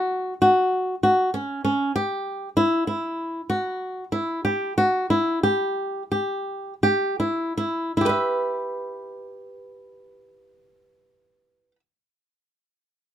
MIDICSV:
0, 0, Header, 1, 2, 480
1, 0, Start_track
1, 0, Tempo, 616016
1, 1520, Time_signature, 9, 3, 24, 8
1, 2966, Tempo, 644468
1, 3926, Tempo, 686499
1, 4886, Tempo, 749064
1, 5846, Tempo, 789474
1, 8993, End_track
2, 0, Start_track
2, 0, Title_t, "Nylon-string guitar"
2, 0, Program_c, 0, 24
2, 0, Note_on_c, 0, 66, 77
2, 257, Note_off_c, 0, 66, 0
2, 325, Note_on_c, 0, 66, 74
2, 735, Note_off_c, 0, 66, 0
2, 805, Note_on_c, 0, 66, 71
2, 1009, Note_off_c, 0, 66, 0
2, 1043, Note_on_c, 0, 61, 68
2, 1248, Note_off_c, 0, 61, 0
2, 1282, Note_on_c, 0, 61, 75
2, 1487, Note_off_c, 0, 61, 0
2, 1524, Note_on_c, 0, 67, 81
2, 1933, Note_off_c, 0, 67, 0
2, 2000, Note_on_c, 0, 64, 75
2, 2205, Note_off_c, 0, 64, 0
2, 2239, Note_on_c, 0, 64, 64
2, 2653, Note_off_c, 0, 64, 0
2, 2724, Note_on_c, 0, 66, 74
2, 3136, Note_off_c, 0, 66, 0
2, 3201, Note_on_c, 0, 64, 66
2, 3405, Note_off_c, 0, 64, 0
2, 3443, Note_on_c, 0, 67, 68
2, 3648, Note_off_c, 0, 67, 0
2, 3688, Note_on_c, 0, 66, 82
2, 3895, Note_off_c, 0, 66, 0
2, 3930, Note_on_c, 0, 64, 66
2, 4129, Note_off_c, 0, 64, 0
2, 4163, Note_on_c, 0, 67, 75
2, 4573, Note_off_c, 0, 67, 0
2, 4639, Note_on_c, 0, 67, 71
2, 5052, Note_off_c, 0, 67, 0
2, 5118, Note_on_c, 0, 67, 72
2, 5321, Note_off_c, 0, 67, 0
2, 5353, Note_on_c, 0, 64, 66
2, 5561, Note_off_c, 0, 64, 0
2, 5595, Note_on_c, 0, 64, 68
2, 5810, Note_off_c, 0, 64, 0
2, 5848, Note_on_c, 0, 64, 64
2, 5873, Note_on_c, 0, 67, 60
2, 5898, Note_on_c, 0, 71, 58
2, 5920, Note_off_c, 0, 64, 0
2, 5922, Note_on_c, 0, 76, 59
2, 8123, Note_off_c, 0, 67, 0
2, 8149, Note_off_c, 0, 71, 0
2, 8173, Note_off_c, 0, 76, 0
2, 8993, End_track
0, 0, End_of_file